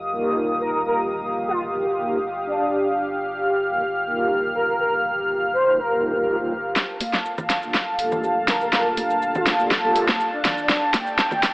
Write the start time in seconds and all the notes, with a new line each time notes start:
Already playing: G1 G4 F5 D#6
0.12 A#3 D#4 F4 G4 A#4
0.61 A#4
0.74 A#4
0.86 A#4
1.48 F4
1.72 A#3 D#4 F4 G4 A#4
1.97 A#3 D#4 F4 G4 A#4
2.46 D4
2.82 F6
3.69 A#3 D#4 F4 G4 A#4
4.06 A#3 D#4 F4 G4 A#4
4.55 A#4
4.68 A#4
4.79 A#4
5.53 C5
5.66 A#3 D#4 F4 G4 A#4
5.78 A#4
5.90 A#3 D#4 F4 G4 A#4
6.15 A#3 D#4 F4 G4 A#4
6.40 A#3 D#4 F4 G4 A#4
6.76 G1 F5 A5, snare, cabasa
7.01 open hi-hat, high conga, cabasa
7.13 G1, snare, cabasa
7.25 cabasa
7.38 G1, high conga, low conga, cabasa
7.50 snare, open hi-hat, cabasa
7.62 A#3 D4 F4 G4 A4, cabasa
7.74 G1, snare, cabasa
7.99 A#3 D4 F4 G4 A4, open hi-hat, cabasa
8.12 low conga, cabasa
8.24 high conga, cabasa
8.48 G1 A#4, snare, open hi-hat, cabasa
8.61 A#4, cabasa
8.72 G1 A#4, snare, cabasa
8.97 open hi-hat, high conga, cabasa
9.10 G1, cabasa
9.22 cabasa
9.34 G1 F4, high conga, low conga, cabasa
9.46 snare, open hi-hat, cabasa
9.59 A#3 D4 F4 G4 A4, cabasa
9.71 G1, snare, high conga, cabasa
9.84 A#3 D4 F4 G4 A4
9.96 open hi-hat, high conga, cabasa
10.08 snare, high conga, cabasa
10.20 cabasa
10.33 D4
10.45 G1, snare, open hi-hat, high conga, low conga, cabasa
10.58 cabasa
10.69 G1 G5, snare, cabasa
10.94 snare, open hi-hat, high conga, cabasa
11.07 G1, cabasa
11.19 snare, cabasa
11.31 G1, high conga, low conga, cabasa
11.43 snare, open hi-hat, cabasa